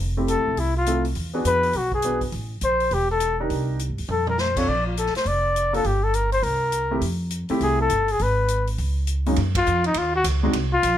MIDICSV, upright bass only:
0, 0, Header, 1, 3, 480
1, 0, Start_track
1, 0, Tempo, 293112
1, 1891, Time_signature, 4, 2, 24, 8
1, 17978, End_track
2, 0, Start_track
2, 0, Title_t, "Upright bass"
2, 0, Program_c, 0, 32
2, 0, Note_on_c, 0, 29, 65
2, 567, Note_off_c, 0, 29, 0
2, 620, Note_on_c, 0, 33, 49
2, 759, Note_off_c, 0, 33, 0
2, 768, Note_on_c, 0, 28, 52
2, 919, Note_off_c, 0, 28, 0
2, 937, Note_on_c, 0, 36, 57
2, 1847, Note_off_c, 0, 36, 0
2, 1893, Note_on_c, 0, 40, 72
2, 2339, Note_off_c, 0, 40, 0
2, 2366, Note_on_c, 0, 41, 64
2, 2815, Note_off_c, 0, 41, 0
2, 2854, Note_on_c, 0, 35, 64
2, 3765, Note_off_c, 0, 35, 0
2, 3803, Note_on_c, 0, 33, 73
2, 4254, Note_off_c, 0, 33, 0
2, 4281, Note_on_c, 0, 34, 66
2, 4732, Note_off_c, 0, 34, 0
2, 4770, Note_on_c, 0, 28, 75
2, 5683, Note_off_c, 0, 28, 0
2, 5728, Note_on_c, 0, 36, 68
2, 6325, Note_off_c, 0, 36, 0
2, 6378, Note_on_c, 0, 43, 51
2, 6524, Note_off_c, 0, 43, 0
2, 6537, Note_on_c, 0, 39, 51
2, 6684, Note_off_c, 0, 39, 0
2, 6691, Note_on_c, 0, 41, 66
2, 7604, Note_off_c, 0, 41, 0
2, 7652, Note_on_c, 0, 34, 77
2, 8379, Note_off_c, 0, 34, 0
2, 8604, Note_on_c, 0, 29, 67
2, 9520, Note_off_c, 0, 29, 0
2, 9576, Note_on_c, 0, 31, 70
2, 10487, Note_off_c, 0, 31, 0
2, 10523, Note_on_c, 0, 36, 68
2, 11440, Note_off_c, 0, 36, 0
2, 11479, Note_on_c, 0, 41, 75
2, 12212, Note_off_c, 0, 41, 0
2, 12453, Note_on_c, 0, 36, 70
2, 12900, Note_off_c, 0, 36, 0
2, 12941, Note_on_c, 0, 31, 68
2, 13385, Note_off_c, 0, 31, 0
2, 13424, Note_on_c, 0, 32, 76
2, 14332, Note_off_c, 0, 32, 0
2, 14384, Note_on_c, 0, 37, 74
2, 15292, Note_off_c, 0, 37, 0
2, 15348, Note_on_c, 0, 42, 81
2, 15807, Note_off_c, 0, 42, 0
2, 15835, Note_on_c, 0, 41, 80
2, 16284, Note_off_c, 0, 41, 0
2, 16294, Note_on_c, 0, 39, 74
2, 16760, Note_off_c, 0, 39, 0
2, 16771, Note_on_c, 0, 37, 79
2, 17238, Note_off_c, 0, 37, 0
2, 17249, Note_on_c, 0, 36, 73
2, 17716, Note_off_c, 0, 36, 0
2, 17730, Note_on_c, 0, 34, 85
2, 17978, Note_off_c, 0, 34, 0
2, 17978, End_track
3, 0, Start_track
3, 0, Title_t, "Muted upright bass strokes"
3, 8436, Note_on_c, 9, 29, 31
3, 8600, Note_off_c, 9, 29, 0
3, 12274, Note_on_c, 9, 29, 30
3, 12438, Note_off_c, 9, 29, 0
3, 17978, End_track
0, 0, End_of_file